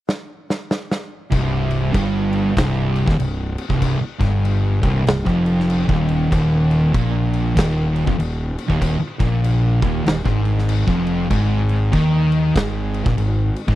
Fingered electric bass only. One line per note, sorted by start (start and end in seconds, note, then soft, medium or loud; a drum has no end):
1.32 1.90 C1 loud
1.95 2.53 G1 loud
2.57 3.04 C1 medium
3.08 3.18 D#1 medium
3.19 3.55 C1 medium
3.70 3.99 C1 loud
4.01 muted fingered electric bass stroke soft
4.21 4.79 G1 loud
4.83 5.05 C1 loud
5.07 5.25 C1 medium
5.27 5.85 F1 loud
5.89 6.29 D#1 medium
6.32 6.90 D#1 loud
6.95 7.53 A#1 loud
7.57 8.04 D#1 loud
8.08 8.18 F1 loud
8.19 8.55 D#1 medium
8.70 8.99 D#1 loud
9.00 muted fingered electric bass stroke soft
9.20 9.78 A#1 loud
9.83 10.05 D#1 loud
10.06 10.24 D#1 medium
10.26 10.84 G#1 loud
10.88 11.28 F1 medium
11.31 11.89 G#1 medium
11.93 12.52 D#2 loud
12.56 13.02 G#1 loud
13.06 13.17 A#1 medium
13.18 13.53 G#1 medium
13.68 13.75 G#1 loud